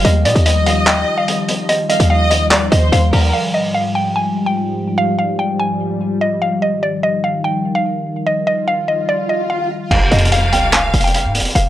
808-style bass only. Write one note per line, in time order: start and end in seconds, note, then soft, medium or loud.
0.05 0.27 D#2 loud
0.25 0.35 A#2 medium
0.35 1.05 D#2 loud
2.00 2.69 D#2 loud
2.72 2.92 D#2 loud
2.92 3.12 D#2 loud
3.13 3.33 D#2 loud
9.91 10.11 F1 loud
10.11 10.54 F2 loud
10.53 10.92 C2 loud
10.94 11.26 F1 loud
11.25 11.41 G#2 loud
11.40 11.55 F1 loud
11.55 11.69 F1 loud